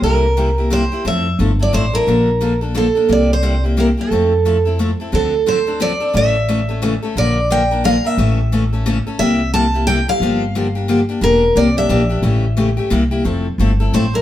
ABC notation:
X:1
M:3/4
L:1/16
Q:"Swing" 1/4=177
K:F
V:1 name="Steel-string acoustic guitar"
B8 c4 | e4 z2 d2 c2 B2- | B6 z2 A4 | d2 c4 z2 B2 A2- |
A6 z6 | [K:Dm] A4 c4 d4 | e8- e2 z2 | d4 g4 f2 e2- |
e8- e2 z2 | e4 a4 g2 f2- | f8- f2 z2 | B4 d2 e6- |
e8 z4 | [K:F] z8 c2 B2 |]
V:2 name="Steel-string acoustic guitar"
[C,G,B,EG]2 z2 [C,G,B,EG] z [B,EG]2 [C,G,B,EG] z [B,EG]2 | [F,A,CEA]2 z2 [F,A,CEA] z [CEA]2 [F,A,CEA] z [CEA]2 | [D,F,B,DA]2 z2 [D,F,B,DA] z [B,DA]2 [D,F,B,DA] z [B,DA]2 | [C,G,B,EG]2 z2 [C,G,B,EG] z [B,EG]2 [C,G,B,EG] z [B,EG]2 |
[F,A,CEA]2 z2 [F,A,CEA] z [CEA]2 [F,A,CEA] z [CEA]2 | [K:Dm] [D,F,CDA]2 z2 [D,F,CDA] z [CDA]2 [D,F,CDA] z [CDA]2 | [^C,E,A,^CA]2 z2 [C,E,A,CA] z [A,CA]2 [C,E,A,CA] z [A,CA]2 | [D,F,B,DB]2 z2 [D,F,B,DB] z [B,DB]2 [D,F,B,DB] z [B,DB]2 |
[^C,E,A,^CA]2 z2 [C,E,A,CA] z [A,CA]2 [C,E,A,CA] z [A,CA]2 | [C,G,B,EG]2 z2 [C,G,B,EG] z [B,EG]2 [C,G,B,EG] z [B,EG]2 | [D,F,B,DG]2 z2 [D,F,B,DG] z [B,DG]2 [D,F,B,DG] z [B,DG]2 | [E,B,DG]2 z2 [E,B,DG] z [B,DG]2 [E,B,DG] z [B,DG]2 |
[^C,E,A,^CG]2 z2 [C,E,A,CG] z [A,CG]2 [=C,G,B,EG] z [B,EG]2 | [K:F] [F,A,CEA]2 z2 [F,A,CEA] z [CEA]2 [F,A,CEA] z [CEA]2 |]
V:3 name="Upright bass" clef=bass
C,,12 | F,,4 G,,,4 A,,,4 | B,,,12 | C,,12 |
F,,12 | [K:Dm] D,,12 | A,,,12 | B,,,12 |
A,,,12 | C,,12 | G,,,12 | E,,,4 C,,4 B,,,4 |
A,,,8 C,,4 | [K:F] F,,,4 G,,,4 A,,,4 |]